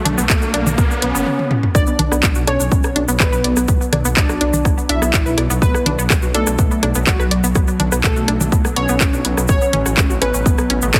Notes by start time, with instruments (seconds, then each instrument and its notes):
Already playing: analog polysynth F#3, ambient pad B3 F#4 C#5, riser
0.05 detuned saw bass B1, synth arpeggio sound D4, closed hi-hat, low conga
0.18 detuned saw bass B1, synth arpeggio sound B3, shaker
0.30 analog polysynth A3, synth arpeggio sound B3, kick, clap, shaker
0.42 detuned saw bass B1, synth arpeggio sound F#4, shaker
0.54 detuned saw bass B1, synth arpeggio sound D4, closed hi-hat
0.66 detuned saw bass B1, synth arpeggio sound D4, low conga, shaker
0.78 synth arpeggio sound B3, kick, shaker
0.91 synth arpeggio sound B3, shaker
1.02 detuned saw bass B1, synth arpeggio sound B3, analog polysynth C#4, closed hi-hat
1.15 detuned saw bass F#1, synth arpeggio sound B3, shaker
1.26 high tom
1.39 high tom
1.51 mid tom
1.63 mid tom
1.75 detuned saw bass B1, synth drone B2 F#3, synth arpeggio sound B3, analog polysynth D4, synth pluck D5, kick, cross-stick, shaker
1.87 synth arpeggio sound B3, shaker
1.99 detuned saw bass B1, synth arpeggio sound D4, closed hi-hat, low conga
2.12 detuned saw bass B1, synth arpeggio sound B3, cross-stick, shaker
2.23 detuned saw bass B1, synth arpeggio sound B3, kick, clap, shaker
2.35 detuned saw bass B1, synth arpeggio sound F#4, shaker
2.47 detuned saw bass B1, analog polysynth C#4, synth arpeggio sound D4, synth pluck C#5, cross-stick, closed hi-hat
2.60 detuned saw bass B1, synth arpeggio sound D4, shaker
2.72 synth arpeggio sound B3, kick, shaker
2.83 synth arpeggio sound B3, cross-stick, shaker
2.96 detuned saw bass B1, synth arpeggio sound D4, closed hi-hat
3.08 detuned saw bass B1, synth arpeggio sound B3, shaker
3.20 analog polysynth B3, synth pluck B4, synth arpeggio sound D5, kick, cross-stick, clap, shaker
3.32 detuned saw bass B1, synth arpeggio sound B4, shaker
3.44 detuned saw bass B1, synth arpeggio sound D5, closed hi-hat
3.57 detuned saw bass B1, synth arpeggio sound B3, cross-stick, shaker
3.68 detuned saw bass B1, synth arpeggio sound B3, kick, shaker
3.81 synth arpeggio sound B3, shaker
3.92 detuned saw bass B1, synth arpeggio sound D4, cross-stick, closed hi-hat, low conga
4.05 detuned saw bass B1, synth arpeggio sound B3, shaker
4.17 synth arpeggio sound B3, analog polysynth D4, synth pluck D5, kick, clap, shaker
4.29 detuned saw bass B1, synth arpeggio sound F#4, cross-stick, shaker
4.41 detuned saw bass B1, synth arpeggio sound D4, closed hi-hat
4.53 detuned saw bass B1, synth arpeggio sound D4, low conga, shaker
4.65 detuned saw bass B1, synth arpeggio sound B3, kick, cross-stick, shaker
4.78 synth arpeggio sound B3, shaker
4.89 detuned saw bass B1, synth arpeggio sound D4, analog polysynth E4, synth pluck E5, closed hi-hat
5.02 detuned saw bass B1, synth arpeggio sound B3, cross-stick, shaker
5.13 synth arpeggio sound D5, kick, clap, shaker
5.26 detuned saw bass B1, synth arpeggio sound B4, shaker
5.38 detuned saw bass B1, synth arpeggio sound D5, cross-stick, closed hi-hat
5.50 detuned saw bass B1, synth arpeggio sound B3, shaker
5.62 analog polysynth B3, synth arpeggio sound B3, synth pluck B4, kick, shaker
5.74 synth arpeggio sound B3, cross-stick, shaker
5.86 detuned saw bass B1, synth arpeggio sound D4, closed hi-hat, low conga
5.99 detuned saw bass B1, synth arpeggio sound B3, shaker
6.10 synth arpeggio sound B3, kick, cross-stick, clap, shaker
6.22 detuned saw bass B1, synth arpeggio sound F#4, shaker
6.34 detuned saw bass B1, analog polysynth A3, synth arpeggio sound D4, synth pluck A4, closed hi-hat
6.47 detuned saw bass B1, synth arpeggio sound D4, cross-stick, shaker
6.58 detuned saw bass B1, synth arpeggio sound B3, kick, shaker
6.71 synth arpeggio sound B3, shaker
6.83 detuned saw bass B1, synth arpeggio sound D4, cross-stick, closed hi-hat
6.95 detuned saw bass B1, synth arpeggio sound B3, shaker
7.07 analog polysynth F#3, synth pluck F#4, synth arpeggio sound D5, kick, clap, shaker
7.20 detuned saw bass B1, synth arpeggio sound B4, cross-stick, shaker
7.31 detuned saw bass B1, synth arpeggio sound D5, closed hi-hat
7.44 detuned saw bass B1, synth arpeggio sound B3, shaker
7.55 synth arpeggio sound B3, kick, cross-stick, shaker
7.68 synth arpeggio sound B3, shaker
7.80 detuned saw bass B1, synth arpeggio sound D4, closed hi-hat, low conga
7.92 detuned saw bass B1, synth arpeggio sound B3, cross-stick, shaker
8.04 detuned saw bass B1, analog polysynth A3, synth arpeggio sound B3, synth pluck A4, kick, clap, shaker
8.16 detuned saw bass B1, synth arpeggio sound F#4, shaker
8.28 detuned saw bass B1, synth arpeggio sound D4, cross-stick, closed hi-hat
8.40 detuned saw bass B1, synth arpeggio sound D4, low conga, shaker
8.52 synth arpeggio sound B3, kick, shaker
8.65 synth arpeggio sound B3, cross-stick, shaker
8.76 detuned saw bass B1, synth arpeggio sound B3, analog polysynth C#4, synth pluck C#5, closed hi-hat
8.89 detuned saw bass B1, synth arpeggio sound B3, shaker
9.01 synth arpeggio sound B3, kick, cross-stick, clap, shaker
9.13 detuned saw bass B1, synth arpeggio sound D4, shaker
9.25 detuned saw bass B1, synth arpeggio sound B3, closed hi-hat
9.37 detuned saw bass B1, synth arpeggio sound B3, cross-stick, shaker
9.48 detuned saw bass A1, synth arpeggio sound B3, analog polysynth C#4, synth pluck C#5, kick, cross-stick, shaker
9.61 synth arpeggio sound B3, shaker
9.73 detuned saw bass A1, synth arpeggio sound C#4, closed hi-hat, low conga
9.86 detuned saw bass A1, synth arpeggio sound F#4, cross-stick, shaker
9.97 detuned saw bass A1, synth arpeggio sound B3, kick, clap, shaker
10.10 detuned saw bass A1, synth arpeggio sound F#4, shaker
10.22 detuned saw bass A1, analog polysynth B3, synth arpeggio sound C#4, synth pluck B4, cross-stick, closed hi-hat
10.34 detuned saw bass A1, synth arpeggio sound C#4, shaker
10.46 synth arpeggio sound B3, kick, shaker
10.58 synth arpeggio sound B3, cross-stick, shaker
10.70 detuned saw bass A1, synth arpeggio sound C#4, closed hi-hat
10.82 detuned saw bass A1, synth arpeggio sound B3, shaker
10.93 detuned saw bass G1, analog polysynth A3, synth pluck A4, synth arpeggio sound C#5, kick, cross-stick, clap, shaker